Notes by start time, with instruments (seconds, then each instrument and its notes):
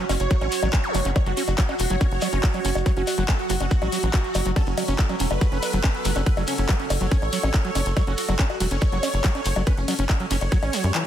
Already playing: synth drone F#3 F#4
0.09 analog synth bass F#1, supersaw synth C#4, acid bass C#4, open hi-hat, high bongo, shekere
0.20 analog synth bass F#1, supersaw synth C#5, closed hi-hat, shekere
0.31 acid bass F#3, kick, closed hi-hat, shekere
0.41 analog synth bass A1, acid bass C#4, closed hi-hat, high bongo, shekere
0.52 open hi-hat, shekere
0.62 analog synth bass A1, acid bass F#3, closed hi-hat, high bongo, shekere
0.73 acid bass C#4, kick, clap, closed hi-hat, shekere
0.84 closed hi-hat, zap, shekere
0.94 analog synth bass F#1, acid bass F#3, open hi-hat, high bongo, shekere
1.05 analog synth bass F#1, acid bass C#4, closed hi-hat, shekere
1.16 supersaw synth C#5, kick, closed hi-hat, high bongo, shekere
1.26 analog synth bass F#1, acid bass F#3, supersaw synth F#4, closed hi-hat, shekere
1.37 acid bass C#4, supersaw synth F#4, open hi-hat, shekere
1.48 analog synth bass F#1, supersaw synth F#4, closed hi-hat, high bongo, shekere
1.58 acid bass F#3, supersaw synth C#5, kick, clap, closed hi-hat, shekere
1.69 acid bass C#4, supersaw synth F#4, closed hi-hat, high bongo, shekere
1.79 analog synth bass E1, supersaw synth F#4, open hi-hat, shekere
1.90 analog synth bass F#1, acid bass F#3, supersaw synth C#5, closed hi-hat, shekere
2.01 acid bass C#4, kick, closed hi-hat, high bongo, shekere
2.12 analog synth bass F#1, closed hi-hat, shekere
2.21 acid bass F#3, open hi-hat, high bongo, shekere
2.32 analog synth bass F#1, acid bass C#4, closed hi-hat, shekere
2.43 kick, clap, closed hi-hat, shekere
2.54 acid bass F#3, closed hi-hat, high bongo, shekere
2.65 analog synth bass F#1, acid bass C#4, open hi-hat, shekere
2.75 analog synth bass F#1, closed hi-hat, high bongo, shekere
2.86 acid bass F#3, supersaw synth C#5, kick, closed hi-hat, shekere
2.97 analog synth bass F#1, acid bass C#4, supersaw synth F#4, closed hi-hat, shekere
3.07 supersaw synth F#4, open hi-hat, high bongo, shekere
3.18 analog synth bass F#1, acid bass F#3, supersaw synth F#4, closed hi-hat, shekere
3.28 acid bass C#4, supersaw synth A4, kick, clap, closed hi-hat, high bongo, shekere
3.39 supersaw synth F#4, closed hi-hat, shekere
3.49 analog synth bass F#1, acid bass F#3, supersaw synth F#4, open hi-hat, shekere
3.60 analog synth bass F#1, acid bass C#4, supersaw synth F#4, closed hi-hat, high bongo, shekere
3.71 kick, closed hi-hat, shekere
3.82 analog synth bass A1, acid bass F#3, closed hi-hat, high bongo, shekere
3.92 acid bass F#3, open hi-hat, shekere
4.02 analog synth bass A1, acid bass F#3, closed hi-hat, shekere
4.13 acid bass F#4, kick, clap, closed hi-hat, high bongo, shekere
4.24 closed hi-hat, shekere
4.34 analog synth bass F#1, acid bass F#3, open hi-hat, high bongo, shekere
4.45 analog synth bass F#1, acid bass F#3, closed hi-hat, shekere
4.56 acid bass C#4, synth drone A4, supersaw synth A4, kick, closed hi-hat, ride, high bongo, shekere
4.66 analog synth bass F#1, supersaw synth C#4, closed hi-hat, shekere
4.77 acid bass F#3, supersaw synth C#4, open hi-hat, ride, high bongo, shekere
4.88 analog synth bass F#1, acid bass C#4, supersaw synth C#4, closed hi-hat, shekere
4.99 supersaw synth A4, kick, clap, closed hi-hat, ride, shekere
5.09 acid bass F#3, supersaw synth C#4, closed hi-hat, high bongo, shekere
5.20 analog synth bass E1, acid bass C#4, supersaw synth C#4, open hi-hat, ride, shekere
5.31 analog synth bass F#1, supersaw synth B4, closed hi-hat, high bongo, shekere
5.41 acid bass F#3, kick, closed hi-hat, ride, shekere
5.52 analog synth bass F#1, acid bass C#4, closed hi-hat, shekere
5.63 open hi-hat, ride, high bongo, shekere
5.73 analog synth bass F#1, acid bass F#3, closed hi-hat, shekere
5.84 acid bass C#4, kick, clap, closed hi-hat, ride, high bongo, shekere
5.95 closed hi-hat, shekere
6.05 analog synth bass F#1, acid bass F#3, open hi-hat, ride, shekere
6.16 analog synth bass F#1, acid bass C#4, closed hi-hat, high bongo, shekere
6.26 supersaw synth B4, kick, closed hi-hat, ride, shekere
6.37 analog synth bass F#1, acid bass F#3, supersaw synth C#4, closed hi-hat, high bongo, shekere
6.47 supersaw synth C#4, acid bass C#4, open hi-hat, ride, shekere
6.58 analog synth bass F#1, supersaw synth C#4, closed hi-hat, shekere
6.69 acid bass F#3, supersaw synth B4, kick, clap, closed hi-hat, ride, high bongo, shekere
6.80 supersaw synth C#4, acid bass C#4, closed hi-hat, shekere
6.90 analog synth bass F#1, supersaw synth C#4, open hi-hat, ride, high bongo, shekere
7.01 analog synth bass F#1, acid bass F#3, supersaw synth C#5, closed hi-hat, shekere
7.11 acid bass C#4, kick, closed hi-hat, ride, shekere
7.22 analog synth bass A1, closed hi-hat, high bongo, shekere
7.33 acid bass F#3, open hi-hat, ride, shekere
7.43 analog synth bass A1, acid bass C#4, high bongo, shekere
7.53 kick, clap, closed hi-hat, ride, shekere
7.65 acid bass F#3, closed hi-hat, shekere
7.75 analog synth bass F#1, acid bass C#4, open hi-hat, ride, high bongo, shekere
7.86 analog synth bass F#1, closed hi-hat, shekere
7.97 acid bass F#3, supersaw synth C#5, kick, closed hi-hat, ride, high bongo, shekere
8.07 analog synth bass F#1, acid bass C#4, supersaw synth F#4, closed hi-hat, shekere
8.17 supersaw synth F#4, open hi-hat, ride, shekere
8.28 analog synth bass F#1, acid bass F#3, supersaw synth F#4, closed hi-hat, high bongo, shekere
8.39 acid bass C#4, supersaw synth C#5, kick, clap, closed hi-hat, ride, shekere
8.50 supersaw synth F#4, closed hi-hat, high bongo, shekere
8.60 analog synth bass E1, acid bass F#3, supersaw synth F#4, open hi-hat, ride, shekere
8.71 analog synth bass F#1, acid bass C#4, supersaw synth C#5, closed hi-hat, shekere
8.81 kick, closed hi-hat, ride, high bongo, shekere
8.92 analog synth bass F#1, acid bass F#3, closed hi-hat, shekere
9.03 acid bass C#4, open hi-hat, ride, high bongo, shekere
9.14 analog synth bass F#1, closed hi-hat, shekere
9.24 acid bass F#3, kick, clap, closed hi-hat, ride, shekere
9.35 acid bass C#4, closed hi-hat, high bongo, shekere
9.45 analog synth bass F#1, open hi-hat, ride, shekere
9.56 analog synth bass F#1, acid bass F#3, closed hi-hat, high bongo, shekere
9.67 acid bass C#4, supersaw synth B4, kick, closed hi-hat, ride, shekere
9.77 analog synth bass F#1, supersaw synth C#4, closed hi-hat, shekere
9.88 acid bass F#3, supersaw synth C#4, open hi-hat, ride, high bongo, shekere
9.99 analog synth bass F#1, supersaw synth C#4, acid bass C#4, closed hi-hat, shekere
10.09 supersaw synth C#5, kick, clap, closed hi-hat, ride, high bongo, shekere
10.19 acid bass F#3, supersaw synth C#4, closed hi-hat, shekere
10.31 analog synth bass F#1, acid bass C#4, supersaw synth C#4, open hi-hat, ride, shekere
10.41 analog synth bass F#1, supersaw synth C#5, closed hi-hat, high bongo, shekere
10.52 acid bass F#3, kick, closed hi-hat, ride, shekere
10.63 analog synth bass A1, acid bass C#4, closed hi-hat, high bongo, shekere
10.73 acid bass F#3, open hi-hat, ride, shekere
10.84 analog synth bass F#2, acid bass G3, closed hi-hat, shekere
10.94 acid bass E3, clap, closed hi-hat, ride, high bongo, shekere